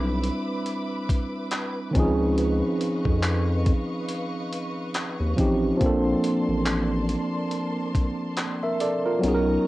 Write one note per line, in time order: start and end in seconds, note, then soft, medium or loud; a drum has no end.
0.00 0.30 B1 medium
0.00 1.89 G3 medium
0.00 1.90 C4 medium
0.00 1.91 D4 medium
0.00 1.92 E4 medium
0.00 1.93 B4 medium
0.00 5.77 B4 medium
0.00 1.92 E5 medium
0.00 1.92 B5 medium
0.00 1.92 D6 medium
0.23 closed hi-hat medium
0.66 closed hi-hat medium
1.09 kick loud
1.09 closed hi-hat medium
1.51 clap loud
1.51 closed hi-hat medium
1.91 2.01 D#3 medium
1.91 5.33 C4 medium
1.95 2.62 C#2 loud
1.95 5.35 F3 medium
1.95 5.34 C#4 medium
1.95 5.35 D#4 medium
1.95 5.77 D#5 medium
1.95 5.77 F5 medium
1.95 5.77 C#6 medium
1.95 kick loud
1.95 closed hi-hat medium
2.00 5.36 G#4 medium
2.38 closed hi-hat medium
2.81 closed hi-hat medium
3.05 3.73 F2 medium
3.05 kick medium
3.23 clap loud
3.23 closed hi-hat medium
3.66 kick loud
3.66 closed hi-hat medium
4.09 closed hi-hat medium
4.53 closed hi-hat medium
4.94 clap loud
4.94 closed hi-hat medium
5.20 5.34 D#2 medium
5.36 5.72 A1 medium
5.36 5.76 F3 medium
5.36 5.80 C4 medium
5.36 5.81 C#4 medium
5.36 5.82 D#4 medium
5.36 kick medium
5.36 closed hi-hat medium
5.40 5.82 G4 medium
5.77 6.14 A#1 loud
5.77 9.18 F3 medium
5.77 9.19 A#3 medium
5.77 9.20 A#3 medium
5.77 9.20 D5 medium
5.77 9.20 A5 medium
5.77 9.20 C6 medium
5.77 kick loud
5.77 closed hi-hat medium
5.81 9.20 C4 medium
5.81 9.21 D4 medium
5.86 8.37 A4 medium
6.24 closed hi-hat medium
6.48 7.16 A1 medium
6.66 clap loud
6.66 closed hi-hat medium
7.09 closed hi-hat medium
7.51 closed hi-hat medium
7.95 kick loud
7.95 closed hi-hat medium
8.37 clap loud
8.37 closed hi-hat medium
8.63 8.80 A#4 medium
8.63 8.80 E5 medium
8.80 9.05 A4 medium
8.80 9.04 D5 medium
8.80 closed hi-hat medium
9.06 9.47 F4 medium
9.06 9.33 A#4 medium
9.19 9.67 F#3 medium
9.19 9.67 B3 medium
9.24 9.57 B1 loud
9.24 9.67 B3 medium
9.24 9.67 C#4 medium
9.24 9.67 D#4 medium
9.24 9.67 D#5 medium
9.24 9.67 A#5 medium
9.24 9.67 C#6 medium
9.24 closed hi-hat medium
9.28 9.33 G#4 medium
9.35 9.67 A#4 medium